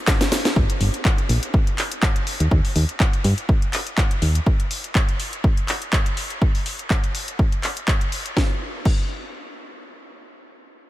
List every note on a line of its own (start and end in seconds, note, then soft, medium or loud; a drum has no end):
0.07 kick loud
0.07 snare medium
0.07 clap loud
0.07 shaker medium
0.21 snare medium
0.21 closed hi-hat medium
0.21 shaker soft
0.32 snare loud
0.32 open hi-hat loud
0.32 shaker medium
0.45 snare medium
0.45 closed hi-hat medium
0.45 shaker soft
0.56 0.65 G1 loud
0.56 kick loud
0.70 closed hi-hat medium
0.81 0.90 G1 loud
0.81 open hi-hat loud
0.94 closed hi-hat medium
1.05 kick loud
1.05 clap loud
1.18 closed hi-hat soft
1.29 1.39 A#1 medium
1.29 open hi-hat loud
1.43 closed hi-hat medium
1.54 kick loud
1.67 closed hi-hat soft
1.78 clap medium
1.78 open hi-hat loud
1.92 closed hi-hat medium
2.03 kick loud
2.03 clap loud
2.16 closed hi-hat medium
2.27 open hi-hat loud
2.40 2.48 D#2 medium
2.40 closed hi-hat medium
2.51 2.61 D#2 loud
2.51 kick loud
2.65 open hi-hat medium
2.76 2.85 D#2 loud
2.76 open hi-hat loud
2.89 closed hi-hat medium
3.00 kick loud
3.00 clap loud
3.13 closed hi-hat soft
3.24 3.34 G2 medium
3.24 open hi-hat loud
3.38 closed hi-hat medium
3.49 kick loud
3.62 closed hi-hat soft
3.73 clap medium
3.73 open hi-hat loud
3.87 closed hi-hat medium
3.98 kick loud
3.98 clap loud
4.11 closed hi-hat medium
4.22 4.40 D#2 medium
4.22 open hi-hat loud
4.35 closed hi-hat medium
4.46 kick loud
4.60 closed hi-hat soft
4.71 open hi-hat loud
4.84 closed hi-hat medium
4.95 kick loud
4.95 clap loud
5.09 closed hi-hat soft
5.20 open hi-hat loud
5.33 closed hi-hat medium
5.44 kick loud
5.57 closed hi-hat soft
5.68 clap medium
5.68 open hi-hat loud
5.82 closed hi-hat medium
5.93 kick loud
5.93 clap loud
6.06 closed hi-hat medium
6.17 open hi-hat loud
6.30 closed hi-hat medium
6.42 kick loud
6.55 open hi-hat medium
6.66 open hi-hat loud
6.79 closed hi-hat medium
6.90 kick loud
6.90 clap loud
7.04 closed hi-hat soft
7.15 open hi-hat loud
7.28 closed hi-hat medium
7.39 kick loud
7.52 closed hi-hat soft
7.63 clap medium
7.63 open hi-hat loud
7.77 closed hi-hat medium
7.88 kick loud
7.88 clap loud
8.01 closed hi-hat soft
8.12 open hi-hat medium
8.26 closed hi-hat medium
8.37 kick loud
8.37 snare medium
8.85 kick loud
8.85 crash medium